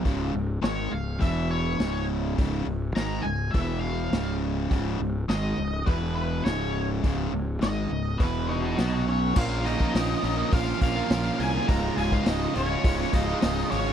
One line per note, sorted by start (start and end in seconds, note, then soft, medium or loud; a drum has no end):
0.03 0.32 C#1 medium
0.03 0.32 C#2 medium
0.03 0.33 G#2 medium
0.03 0.33 C#3 medium
0.03 kick medium
0.03 open hi-hat soft
0.33 0.61 C#1 medium
0.33 0.57 C#2 medium
0.33 0.57 G#2 medium
0.62 0.90 G#1 medium
0.62 0.90 G#2 medium
0.62 0.91 D#3 medium
0.62 0.91 G#3 medium
0.62 0.93 C#5 medium
0.62 snare medium
0.62 open hi-hat soft
0.91 1.19 C#1 medium
0.91 1.15 C#2 medium
0.91 1.15 G#2 medium
0.91 1.20 F5 medium
1.20 1.76 E1 medium
1.20 1.78 E2 medium
1.20 1.78 B2 medium
1.20 1.78 E3 medium
1.20 1.48 E5 medium
1.20 kick medium
1.20 open hi-hat soft
1.51 2.05 C#5 medium
1.78 2.34 C#1 medium
1.78 2.36 C#2 medium
1.78 2.36 G#2 medium
1.78 2.37 C#3 medium
1.78 snare loud
1.78 open hi-hat soft
2.37 2.65 C#1 medium
2.37 2.65 C#2 medium
2.37 2.65 G#2 medium
2.37 2.66 C#3 medium
2.37 kick loud
2.37 open hi-hat soft
2.66 2.93 C#1 medium
2.66 2.90 C#2 medium
2.66 2.90 G#2 medium
2.95 3.23 G#1 medium
2.95 3.24 G#2 medium
2.95 3.24 D#3 medium
2.95 3.24 G#3 medium
2.95 3.22 A#5 loud
2.95 snare loud
2.95 open hi-hat soft
3.22 3.51 C#1 medium
3.22 3.48 C#2 medium
3.22 3.48 G#2 medium
3.22 3.51 G#5 medium
3.51 4.11 E2 medium
3.51 4.11 B2 medium
3.51 4.12 E3 medium
3.51 3.80 E5 medium
3.51 kick loud
3.51 open hi-hat soft
3.55 4.09 E1 medium
3.81 4.36 F5 medium
4.12 4.66 C#1 medium
4.12 4.69 C#2 medium
4.12 4.70 G#2 medium
4.12 4.70 C#3 loud
4.12 snare loud
4.12 open hi-hat soft
4.70 4.98 C#1 medium
4.70 4.99 C#2 medium
4.70 4.99 G#2 loud
4.70 4.99 C#3 loud
4.70 kick loud
4.70 open hi-hat soft
5.00 5.27 C#1 medium
5.00 5.23 C#2 medium
5.00 5.23 G#2 medium
5.28 5.56 G#1 medium
5.28 5.57 G#2 medium
5.28 5.57 D#3 medium
5.28 5.57 G#3 medium
5.28 5.83 D#5 medium
5.28 snare loud
5.28 open hi-hat soft
5.58 5.85 C#1 medium
5.58 5.81 C#2 medium
5.58 5.81 G#2 medium
5.86 6.41 E1 medium
5.86 6.44 E2 medium
5.86 6.44 B2 medium
5.86 6.44 E3 loud
5.86 6.14 B4 medium
5.86 kick loud
5.86 open hi-hat soft
6.15 6.44 B4 medium
6.45 7.00 C#1 medium
6.45 7.02 C#2 medium
6.45 7.03 G#2 medium
6.45 7.03 C#3 medium
6.45 6.86 C#5 medium
6.45 snare loud
6.45 open hi-hat soft
7.03 7.31 C#1 medium
7.03 7.31 C#2 medium
7.03 7.31 G#2 medium
7.03 7.32 C#3 medium
7.03 kick medium
7.03 open hi-hat soft
7.32 7.59 C#1 medium
7.32 7.56 C#2 medium
7.32 7.56 G#2 medium
7.61 7.89 G#1 medium
7.61 7.90 G#2 medium
7.61 7.90 D#3 medium
7.61 7.90 G#3 medium
7.61 8.22 D#5 medium
7.61 snare medium
7.61 open hi-hat soft
7.90 8.18 C#1 medium
7.90 8.14 C#2 medium
7.90 8.14 G#2 medium
8.18 8.74 E1 medium
8.18 8.77 E2 medium
8.18 8.77 B2 medium
8.18 8.77 E3 medium
8.18 8.46 B4 medium
8.18 kick loud
8.18 open hi-hat soft
8.47 9.03 D#4 medium
8.47 9.02 B4 medium
8.47 9.03 D#5 medium
8.78 9.32 B1 medium
8.78 9.35 B2 medium
8.78 9.35 F#3 medium
8.78 9.36 B3 medium
8.78 snare loud
8.78 open hi-hat soft
9.07 9.34 C#4 medium
9.07 9.38 C#5 medium
9.35 9.75 A#1 loud
9.35 9.92 A#2 medium
9.35 9.93 F3 medium
9.35 9.63 A#3 medium
9.35 9.65 C#4 loud
9.35 9.66 F4 medium
9.35 9.64 F4 medium
9.35 9.66 A#4 loud
9.35 9.64 F5 loud
9.35 kick loud
9.35 crash loud
9.64 9.80 A#3 medium
9.64 9.80 C#4 medium
9.64 10.49 D#4 medium
9.64 9.80 F4 medium
9.64 9.78 A#4 medium
9.64 10.53 D#5 medium
9.64 open hi-hat medium
9.79 9.93 A#3 medium
9.79 9.95 C#4 medium
9.79 9.95 F4 medium
9.79 9.95 A#4 medium
9.79 kick medium
9.93 10.14 A#1 medium
9.93 10.52 A#2 medium
9.93 11.10 F3 loud
9.93 10.21 A#3 medium
9.93 10.23 C#4 medium
9.93 10.24 F4 loud
9.93 10.24 A#4 loud
9.93 snare loud
9.93 open hi-hat medium
10.22 10.42 A#1 medium
10.22 10.39 A#3 medium
10.22 10.38 C#4 medium
10.22 10.37 F4 medium
10.22 10.36 A#4 medium
10.22 open hi-hat medium
10.37 10.50 A#3 soft
10.37 10.52 C#4 medium
10.37 10.53 F4 medium
10.37 10.53 A#4 medium
10.52 10.72 A#1 medium
10.52 10.67 A#3 medium
10.52 10.67 C#4 medium
10.52 10.80 F4 medium
10.52 10.66 F4 medium
10.52 10.65 A#4 medium
10.52 10.80 F5 medium
10.52 kick loud
10.52 open hi-hat medium
10.66 10.97 A#3 medium
10.66 10.96 C#4 medium
10.66 10.95 F4 medium
10.66 10.94 A#4 medium
10.81 11.01 A#1 medium
10.81 10.96 A#3 medium
10.81 10.96 C#4 medium
10.81 11.35 F4 medium
10.81 10.95 F4 medium
10.81 10.94 A#4 medium
10.81 11.42 F5 loud
10.81 kick medium
10.81 open hi-hat medium
10.95 11.10 A#3 medium
10.95 11.10 C#4 medium
10.95 11.11 F4 medium
10.95 11.11 A#4 medium
11.10 11.29 A#1 medium
11.10 11.66 A#2 loud
11.10 11.66 F3 medium
11.10 11.38 A#3 medium
11.10 11.38 C#4 loud
11.10 11.39 F4 medium
11.10 11.40 A#4 loud
11.10 snare loud
11.10 open hi-hat medium
11.39 11.58 C2 medium
11.39 11.54 A#3 medium
11.39 11.53 C#4 medium
11.39 11.53 F4 medium
11.39 11.67 G#4 medium
11.39 11.52 A#4 medium
11.39 11.66 G#5 loud
11.39 open hi-hat medium
11.53 11.67 A#3 medium
11.53 11.67 C#4 medium
11.53 11.67 F4 medium
11.53 11.66 A#4 medium
11.67 11.88 C#1 loud
11.67 12.24 C#2 medium
11.67 11.95 G#2 medium
11.67 11.96 C#3 loud
11.67 11.97 G#3 loud
11.67 11.98 F4 medium
11.67 11.95 A#4 medium
11.67 11.97 A#5 loud
11.67 kick loud
11.67 open hi-hat medium
11.96 12.16 C#1 medium
11.96 12.24 G#2 medium
11.96 12.12 C#3 medium
11.96 12.11 G#3 medium
11.96 12.09 F4 medium
11.96 12.10 G#4 medium
11.96 12.12 G#5 loud
11.96 open hi-hat medium
12.11 12.25 C#3 medium
12.11 12.26 G#3 medium
12.11 12.26 F4 medium
12.11 12.25 F4 medium
12.11 12.27 F5 medium
12.11 kick medium
12.25 12.45 C#1 medium
12.25 12.83 C#2 medium
12.25 12.52 G#2 loud
12.25 12.53 C#3 medium
12.25 12.54 G#3 loud
12.25 12.52 D#4 medium
12.25 12.54 F4 medium
12.25 12.54 D#5 loud
12.25 snare loud
12.25 open hi-hat medium
12.53 12.75 C#1 medium
12.53 12.81 G#2 medium
12.53 12.69 C#3 medium
12.53 12.68 G#3 medium
12.53 13.09 C#4 medium
12.53 12.67 F4 medium
12.53 open hi-hat medium
12.58 13.16 C#5 medium
12.68 12.82 C#3 medium
12.68 12.83 G#3 medium
12.68 12.84 F4 medium
12.82 13.03 C#1 medium
12.82 13.27 G#2 medium
12.82 12.99 C#3 medium
12.82 12.97 G#3 medium
12.82 12.96 F4 medium
12.82 kick loud
12.82 open hi-hat medium
12.97 13.28 C#3 medium
12.97 13.27 G#3 medium
12.97 13.26 F4 medium
13.13 13.32 C#1 medium
13.13 13.40 G#2 medium
13.13 13.28 C#3 medium
13.13 13.27 G#3 medium
13.13 13.67 D#4 medium
13.13 13.26 F4 medium
13.13 13.73 D#5 medium
13.13 kick medium
13.13 open hi-hat medium
13.27 13.41 C#3 medium
13.27 13.42 G#3 medium
13.27 13.42 F4 medium
13.41 13.62 C#1 medium
13.41 13.93 C#2 loud
13.41 13.69 G#2 loud
13.41 13.70 C#3 loud
13.41 13.70 G#3 loud
13.41 13.71 F4 loud
13.41 snare loud
13.41 open hi-hat medium
13.70 13.93 G#1 medium
13.70 13.93 G#2 medium
13.70 13.86 C#3 medium
13.70 13.85 G#3 medium
13.70 13.93 C#4 medium
13.70 13.83 F4 medium
13.70 13.93 C#5 medium
13.70 open hi-hat medium
13.84 13.93 C#3 medium
13.84 13.93 G#3 medium
13.84 13.93 F4 medium